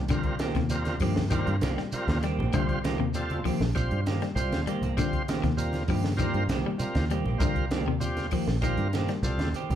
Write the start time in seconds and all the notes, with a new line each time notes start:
Already playing: C2
0.08 D3 G3 C4 F4 A#4, kick, closed hi-hat, low conga, shekere
0.23 kick, closed hi-hat
0.39 D#3 A#3 C4 G4, snare, closed hi-hat, high conga, shekere
0.55 D#2 C3, kick, snare, closed hi-hat, high conga
0.69 G3 C4 F4 A#4, closed hi-hat, shekere
0.85 snare, closed hi-hat, high conga
1.00 G2 D#3 F3 A#3 C4 G4, kick, open hi-hat, shekere
1.16 snare, high conga, low conga
1.30 D#3 G3 A#3 C4 F4 G4 A#4, kick, closed hi-hat, shekere
1.47 G2, closed hi-hat
1.61 C2 D#3 A#3 C4 G4, snare, closed hi-hat, high conga, shekere
1.77 G3, snare
1.92 G3 C4 F4 A#4, muted fingered electric bass stroke, closed hi-hat, shekere
2.07 D#2, kick, snare, closed hi-hat, high conga
2.23 D#3 G3 A#3 C4 G4, snare, closed hi-hat, shekere
2.38 A#1 A#3 C4 G4, low conga
2.53 C2 D3 G3 C4 F4 C5, kick, closed hi-hat, low conga, shekere
2.69 kick, closed hi-hat
2.84 D#3 A#3 C4 G4, snare, closed hi-hat, high conga, shekere
3.00 D#2 C3
3.14 G3 C4 F4 A4, closed hi-hat, shekere
3.30 closed hi-hat, high conga
3.44 D#3 F3 A#3 C4 G4, kick, snare, open hi-hat, shekere
3.60 A#1, snare, low conga
3.75 G3 C4 F4 C5, muted clean electric guitar stroke, kick, closed hi-hat, shekere
3.91 G2, closed hi-hat
4.06 D#3 A#3 C4 G4, snare, closed hi-hat, high conga, shekere
4.22 G3, snare, closed hi-hat
4.35 C2 G3 C4 F4 C5, closed hi-hat, shekere
4.52 D#2, snare, closed hi-hat, high conga
4.66 D#3 G3 A#3 C4 G4, muted fingered electric bass stroke, closed hi-hat, shekere
4.82 C2 A#3 C4, muted clean electric guitar stroke, closed hi-hat, low conga
4.97 D3 G3 C4 F4 C5, kick, closed hi-hat, low conga, shekere
5.13 kick, closed hi-hat
5.28 D#3 A#3 C4 G4, snare, closed hi-hat, high conga, shekere
5.43 D#2 C3, kick, snare, closed hi-hat
5.57 G3 C4 F4 A#4, closed hi-hat, shekere
5.73 snare, closed hi-hat, high conga
5.88 G2 D#3 F3 A#3 C4 G4, kick, open hi-hat, shekere
6.04 snare, high conga
6.17 D#3 G3 A#3 C4 F4 A#4, kick, closed hi-hat, shekere
6.21 G4
6.34 G2, closed hi-hat
6.48 C2 D#3 A#3 C4 G4, snare, closed hi-hat, high conga, shekere
6.66 G3
6.78 G3 C4 F4 A#4, muted fingered electric bass stroke, closed hi-hat, shekere
6.95 D#2, kick, snare, closed hi-hat, high conga
7.10 D#3 G3 A#3 C4 G4, closed hi-hat, high conga, shekere
7.25 A#1 A#3 C4 G4, low conga
7.38 C2 D3 G3 C4 F4 A#4, kick, closed hi-hat, low conga, shekere
7.56 kick, closed hi-hat
7.71 D#3 A#3 C4 G4, snare, closed hi-hat, high conga, shekere
7.86 D#2 C3
8.00 G3 C4 F4 G4, closed hi-hat, shekere
8.17 snare, closed hi-hat, high conga
8.31 D#3 F3 A#3 C4 G4, kick, open hi-hat, shekere
8.48 A#1, snare
8.61 D#3 G3 A#3 C4 F4 G4 A#4, kick, closed hi-hat, shekere
8.77 G2, closed hi-hat
8.93 D#3 A#3 C4 G4, snare, closed hi-hat, high conga, shekere
9.08 G3, snare, closed hi-hat
9.23 C2 G3 C4 F4 A4, closed hi-hat, shekere
9.38 D#2, snare, closed hi-hat, high conga
9.53 D#3 C4 G4, muted fingered electric bass stroke, closed hi-hat, shekere
9.70 C2 A#3 C4 G4, closed hi-hat, low conga